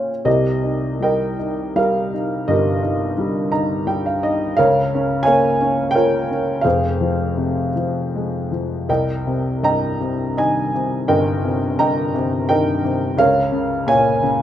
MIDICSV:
0, 0, Header, 1, 2, 480
1, 0, Start_track
1, 0, Tempo, 756620
1, 164, Time_signature, 3, 2, 24, 8
1, 1123, Tempo, 717703
1, 1603, Tempo, 692841
1, 4483, Tempo, 744417
1, 6883, Tempo, 704225
1, 9646, End_track
2, 0, Start_track
2, 0, Title_t, "Grand piano"
2, 0, Program_c, 0, 0
2, 0, Control_c, 0, 64, 127
2, 0, Note_on_c, 0, 46, 52
2, 0, Note_on_c, 0, 58, 34
2, 0, Note_on_c, 0, 61, 32
2, 0, Note_on_c, 0, 65, 41
2, 0, Note_on_c, 0, 73, 46
2, 0, Note_on_c, 0, 77, 52
2, 0, Note_on_c, 0, 79, 53
2, 134, Note_off_c, 0, 46, 0
2, 138, Note_off_c, 0, 73, 0
2, 157, Note_on_c, 0, 48, 50
2, 157, Note_on_c, 0, 67, 48
2, 160, Note_on_c, 0, 36, 48
2, 160, Note_on_c, 0, 75, 70
2, 161, Note_on_c, 0, 70, 45
2, 174, Control_c, 0, 64, 0
2, 176, Note_off_c, 0, 61, 0
2, 176, Note_off_c, 0, 65, 0
2, 176, Note_off_c, 0, 79, 0
2, 178, Note_off_c, 0, 77, 0
2, 179, Note_off_c, 0, 58, 0
2, 275, Control_c, 0, 64, 127
2, 400, Note_on_c, 0, 63, 46
2, 637, Note_on_c, 0, 55, 41
2, 649, Note_off_c, 0, 75, 0
2, 650, Note_off_c, 0, 70, 0
2, 650, Note_on_c, 0, 79, 69
2, 659, Note_on_c, 0, 70, 57
2, 659, Note_on_c, 0, 75, 59
2, 859, Note_off_c, 0, 67, 0
2, 871, Note_off_c, 0, 63, 0
2, 880, Note_on_c, 0, 63, 47
2, 1099, Note_off_c, 0, 79, 0
2, 1106, Note_off_c, 0, 55, 0
2, 1115, Note_on_c, 0, 55, 48
2, 1117, Note_on_c, 0, 77, 78
2, 1121, Note_off_c, 0, 70, 0
2, 1131, Note_on_c, 0, 70, 55
2, 1345, Note_off_c, 0, 75, 0
2, 1356, Note_off_c, 0, 63, 0
2, 1366, Note_on_c, 0, 63, 46
2, 1573, Note_off_c, 0, 48, 0
2, 1575, Note_off_c, 0, 36, 0
2, 1596, Note_on_c, 0, 31, 55
2, 1596, Note_on_c, 0, 75, 73
2, 1599, Note_on_c, 0, 43, 58
2, 1606, Note_off_c, 0, 70, 0
2, 1611, Note_on_c, 0, 67, 52
2, 1615, Note_off_c, 0, 77, 0
2, 1617, Note_on_c, 0, 70, 53
2, 1821, Note_off_c, 0, 63, 0
2, 1831, Note_on_c, 0, 63, 52
2, 2053, Note_off_c, 0, 55, 0
2, 2084, Note_on_c, 0, 55, 50
2, 2292, Note_off_c, 0, 75, 0
2, 2300, Note_off_c, 0, 67, 0
2, 2303, Note_off_c, 0, 70, 0
2, 2306, Note_off_c, 0, 63, 0
2, 2316, Note_on_c, 0, 82, 70
2, 2317, Note_on_c, 0, 63, 62
2, 2544, Note_off_c, 0, 82, 0
2, 2549, Note_off_c, 0, 55, 0
2, 2559, Note_on_c, 0, 55, 52
2, 2561, Note_on_c, 0, 79, 67
2, 2675, Note_off_c, 0, 79, 0
2, 2691, Note_on_c, 0, 77, 61
2, 2796, Note_off_c, 0, 63, 0
2, 2801, Note_off_c, 0, 77, 0
2, 2806, Note_on_c, 0, 63, 54
2, 2811, Note_on_c, 0, 75, 73
2, 3018, Note_off_c, 0, 31, 0
2, 3019, Note_off_c, 0, 43, 0
2, 3032, Note_off_c, 0, 55, 0
2, 3035, Note_off_c, 0, 75, 0
2, 3042, Note_off_c, 0, 63, 0
2, 3043, Note_on_c, 0, 77, 95
2, 3054, Note_on_c, 0, 70, 68
2, 3054, Note_on_c, 0, 73, 66
2, 3056, Note_on_c, 0, 49, 68
2, 3058, Note_on_c, 0, 37, 60
2, 3059, Control_c, 0, 64, 0
2, 3185, Control_c, 0, 64, 127
2, 3306, Note_on_c, 0, 61, 64
2, 3496, Note_off_c, 0, 77, 0
2, 3501, Note_on_c, 0, 80, 91
2, 3507, Note_off_c, 0, 73, 0
2, 3517, Note_on_c, 0, 73, 71
2, 3522, Note_on_c, 0, 77, 69
2, 3532, Note_on_c, 0, 58, 56
2, 3736, Note_off_c, 0, 70, 0
2, 3757, Note_off_c, 0, 61, 0
2, 3768, Note_on_c, 0, 61, 58
2, 3972, Note_on_c, 0, 79, 92
2, 3989, Note_off_c, 0, 73, 0
2, 3999, Note_off_c, 0, 80, 0
2, 4000, Note_on_c, 0, 73, 65
2, 4005, Note_on_c, 0, 70, 66
2, 4006, Note_on_c, 0, 65, 56
2, 4207, Note_off_c, 0, 77, 0
2, 4238, Note_off_c, 0, 61, 0
2, 4249, Note_on_c, 0, 61, 52
2, 4458, Note_off_c, 0, 73, 0
2, 4460, Note_off_c, 0, 49, 0
2, 4460, Note_off_c, 0, 58, 0
2, 4461, Note_off_c, 0, 37, 0
2, 4461, Note_off_c, 0, 70, 0
2, 4462, Note_on_c, 0, 77, 78
2, 4474, Note_off_c, 0, 65, 0
2, 4480, Note_on_c, 0, 68, 56
2, 4483, Note_off_c, 0, 61, 0
2, 4483, Note_on_c, 0, 29, 51
2, 4483, Note_on_c, 0, 72, 53
2, 4486, Note_on_c, 0, 41, 57
2, 4487, Note_off_c, 0, 79, 0
2, 4492, Control_c, 0, 64, 0
2, 4591, Control_c, 0, 64, 127
2, 4718, Note_on_c, 0, 53, 48
2, 4952, Note_on_c, 0, 48, 45
2, 5161, Note_off_c, 0, 77, 0
2, 5169, Note_off_c, 0, 68, 0
2, 5170, Note_off_c, 0, 72, 0
2, 5190, Note_off_c, 0, 53, 0
2, 5200, Note_on_c, 0, 53, 48
2, 5457, Note_on_c, 0, 56, 44
2, 5680, Note_off_c, 0, 53, 0
2, 5689, Note_on_c, 0, 53, 41
2, 5901, Note_off_c, 0, 48, 0
2, 5903, Note_off_c, 0, 29, 0
2, 5904, Note_off_c, 0, 41, 0
2, 5922, Note_off_c, 0, 53, 0
2, 5922, Note_off_c, 0, 56, 0
2, 5931, Note_on_c, 0, 70, 51
2, 5931, Note_on_c, 0, 75, 56
2, 5934, Note_on_c, 0, 36, 51
2, 5935, Note_on_c, 0, 79, 69
2, 5938, Control_c, 0, 64, 0
2, 6042, Control_c, 0, 64, 127
2, 6175, Note_on_c, 0, 48, 47
2, 6384, Note_off_c, 0, 79, 0
2, 6401, Note_off_c, 0, 75, 0
2, 6407, Note_on_c, 0, 43, 44
2, 6410, Note_on_c, 0, 75, 59
2, 6413, Note_on_c, 0, 79, 53
2, 6416, Note_on_c, 0, 82, 84
2, 6622, Note_off_c, 0, 70, 0
2, 6639, Note_off_c, 0, 48, 0
2, 6649, Note_on_c, 0, 48, 53
2, 6864, Note_off_c, 0, 82, 0
2, 6877, Note_off_c, 0, 75, 0
2, 6887, Note_on_c, 0, 75, 52
2, 6892, Note_on_c, 0, 51, 47
2, 6894, Note_on_c, 0, 80, 78
2, 7110, Note_off_c, 0, 79, 0
2, 7131, Note_off_c, 0, 48, 0
2, 7141, Note_on_c, 0, 48, 47
2, 7348, Note_off_c, 0, 43, 0
2, 7351, Note_off_c, 0, 36, 0
2, 7360, Note_off_c, 0, 75, 0
2, 7370, Note_on_c, 0, 75, 60
2, 7370, Note_on_c, 0, 79, 78
2, 7373, Note_on_c, 0, 31, 64
2, 7373, Note_on_c, 0, 70, 63
2, 7394, Note_off_c, 0, 80, 0
2, 7606, Note_off_c, 0, 48, 0
2, 7616, Note_on_c, 0, 48, 51
2, 7824, Note_off_c, 0, 79, 0
2, 7830, Note_off_c, 0, 51, 0
2, 7844, Note_off_c, 0, 75, 0
2, 7852, Note_on_c, 0, 43, 52
2, 7853, Note_on_c, 0, 82, 86
2, 7854, Note_on_c, 0, 75, 61
2, 7859, Note_on_c, 0, 79, 62
2, 8064, Note_off_c, 0, 70, 0
2, 8087, Note_off_c, 0, 48, 0
2, 8097, Note_on_c, 0, 48, 59
2, 8300, Note_off_c, 0, 82, 0
2, 8318, Note_off_c, 0, 79, 0
2, 8325, Note_off_c, 0, 75, 0
2, 8328, Note_on_c, 0, 79, 88
2, 8335, Note_on_c, 0, 75, 59
2, 8337, Note_on_c, 0, 70, 62
2, 8338, Note_on_c, 0, 51, 57
2, 8556, Note_off_c, 0, 48, 0
2, 8566, Note_on_c, 0, 48, 56
2, 8773, Note_off_c, 0, 31, 0
2, 8773, Note_off_c, 0, 43, 0
2, 8778, Note_off_c, 0, 75, 0
2, 8779, Note_off_c, 0, 70, 0
2, 8793, Note_off_c, 0, 51, 0
2, 8794, Note_on_c, 0, 37, 69
2, 8796, Note_off_c, 0, 48, 0
2, 8804, Note_on_c, 0, 77, 99
2, 8810, Note_on_c, 0, 70, 65
2, 8810, Note_on_c, 0, 73, 62
2, 8812, Control_c, 0, 64, 0
2, 8816, Note_off_c, 0, 79, 0
2, 8931, Control_c, 0, 64, 127
2, 9031, Note_on_c, 0, 49, 62
2, 9255, Note_off_c, 0, 77, 0
2, 9268, Note_on_c, 0, 46, 56
2, 9272, Note_off_c, 0, 73, 0
2, 9276, Note_on_c, 0, 80, 94
2, 9282, Note_on_c, 0, 73, 69
2, 9283, Note_on_c, 0, 77, 60
2, 9499, Note_off_c, 0, 70, 0
2, 9504, Note_off_c, 0, 49, 0
2, 9515, Note_on_c, 0, 49, 69
2, 9646, Note_off_c, 0, 37, 0
2, 9646, Note_off_c, 0, 46, 0
2, 9646, Note_off_c, 0, 49, 0
2, 9646, Note_off_c, 0, 73, 0
2, 9646, Note_off_c, 0, 77, 0
2, 9646, Note_off_c, 0, 80, 0
2, 9646, End_track
0, 0, End_of_file